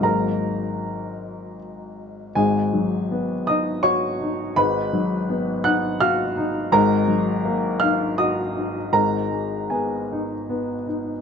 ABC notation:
X:1
M:3/4
L:1/8
Q:1/4=81
K:G#dor
V:1 name="Upright piano"
[Aa]4 z2 | [Gg]3 [dd'] [cc']2 | [Bb]3 [ff'] [ee']2 | [Aa]3 [ee'] [dd']2 |
[Aa]2 [Gg]3 z |]
V:2 name="Upright piano"
[G,,,G,,F,A,D]6 | [G,,,G,,] F, B, D F D | [G,,,G,,] F, B, D F D | [G,,,G,,] F, A, D F D |
[G,,,G,,] G, B, D B, D |]